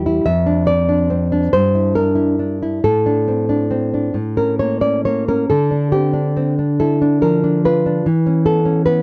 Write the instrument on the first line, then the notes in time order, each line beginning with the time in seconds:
nylon-string guitar
Already playing: E2 G3 F#4 G4
0.06 E4
0.26 F2 E5
0.46 D4
0.66 C4 D5
0.89 D4
1.10 C4
1.32 D4
1.53 G2 C5
1.75 E4
1.95 D4 A#4
2.15 E4
2.39 D4
2.63 E4
2.84 A2 A4
3.06 D4
3.28 C4
3.49 D4
3.71 C4
3.94 D4
4.14 A2
4.37 C#4 A#4
4.59 A#3 C#5
4.81 C#4 D5
5.05 A#3 C#5
5.28 C#4 A#4
5.50 D3 A4
5.71 D4
5.92 C4 G4
6.13 D4
6.37 C4
6.59 D4
6.80 E4 A4
7.02 D4
7.22 F3 A#4
7.44 D4
7.65 F4 B4
7.86 D4
8.06 E3
8.26 C#4
8.45 B3 A4
8.65 C#4
8.86 B3 B4